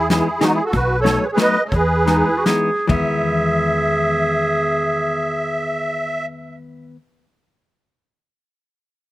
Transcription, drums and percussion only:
0.10 snare medium
0.10 closed hi-hat soft
0.41 snare medium
0.41 closed hi-hat medium
0.73 kick medium
0.73 closed hi-hat soft
1.06 snare medium
1.06 closed hi-hat medium
1.38 snare medium
1.38 closed hi-hat soft
1.72 kick medium
1.72 closed hi-hat soft
2.07 snare medium
2.07 closed hi-hat soft
2.46 snare medium
2.46 closed hi-hat soft
2.89 kick medium
2.89 floor tom medium

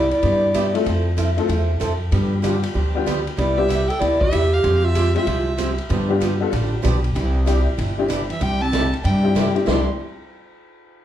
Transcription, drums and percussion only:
0.11 ride soft
0.23 kick soft
0.23 ride medium
0.54 kick soft
0.54 hi-hat pedal medium
0.54 ride medium
0.75 ride medium
0.86 kick soft
0.86 ride medium
1.18 kick soft
1.18 hi-hat pedal medium
1.18 ride medium
1.38 ride soft
1.49 kick soft
1.49 ride medium
1.81 kick soft
1.81 hi-hat pedal medium
1.81 ride medium
2.12 kick soft
2.12 ride medium
2.44 kick soft
2.44 hi-hat pedal medium
2.44 ride medium
2.63 ride medium
2.75 kick soft
3.07 kick soft
3.07 hi-hat pedal medium
3.07 ride medium
3.27 ride soft
3.38 kick soft
3.38 ride medium
3.70 kick soft
3.70 hi-hat pedal medium
3.70 ride medium
3.90 ride medium
4.01 kick soft
4.01 ride medium
4.21 kick medium
4.32 kick soft
4.32 hi-hat pedal medium
4.32 ride medium
4.64 kick soft
4.64 ride medium
4.95 kick soft
4.95 hi-hat pedal medium
4.95 ride medium
5.16 ride soft
5.27 kick soft
5.27 ride medium
5.58 kick soft
5.58 hi-hat pedal medium
5.58 ride medium
5.78 ride soft
5.90 kick soft
5.90 ride medium
6.21 kick soft
6.21 hi-hat pedal medium
6.21 ride medium
6.53 kick soft
6.53 ride medium
6.84 kick soft
6.84 hi-hat pedal medium
6.84 ride medium
7.04 ride soft
7.16 kick soft
7.16 ride medium
7.47 kick soft
7.47 hi-hat pedal medium
7.47 ride medium
7.78 kick soft
7.78 ride medium
8.10 kick soft
8.10 hi-hat pedal medium
8.10 ride medium
8.30 ride soft
8.41 kick soft
8.41 ride medium
8.73 kick soft
8.73 snare medium
8.73 hi-hat pedal medium
8.73 ride medium
8.93 ride soft
9.04 kick soft
9.04 ride medium
9.36 kick soft
9.36 snare medium
9.36 hi-hat pedal medium
9.36 ride medium
9.56 ride soft
9.67 snare medium

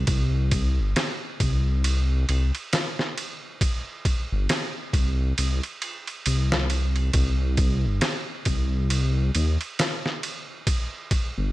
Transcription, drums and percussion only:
0.07 kick loud
0.07 ride medium
0.51 kick medium
0.51 ride medium
0.96 snare loud
0.96 ride medium
1.40 kick medium
1.40 ride medium
1.84 ride medium
2.29 ride medium
2.55 ride soft
2.73 snare loud
2.73 ride medium
2.99 snare soft
3.18 ride medium
3.61 kick loud
3.61 ride medium
4.05 kick medium
4.05 ride medium
4.49 snare loud
4.49 ride medium
4.93 kick medium
4.93 ride medium
5.38 ride medium
5.63 ride soft
5.82 ride medium
6.07 ride soft
6.26 ride medium
6.52 snare loud
6.70 ride medium
6.96 ride soft
7.13 kick loud
7.13 ride medium
7.57 kick medium
7.57 ride medium
8.01 snare loud
8.01 ride medium
8.45 kick medium
8.45 ride medium
8.90 ride medium
9.35 ride medium
9.61 ride soft
9.79 snare loud
9.79 ride medium
10.06 snare soft
10.23 ride medium
10.67 kick loud
10.67 ride medium
11.11 kick medium
11.11 ride medium

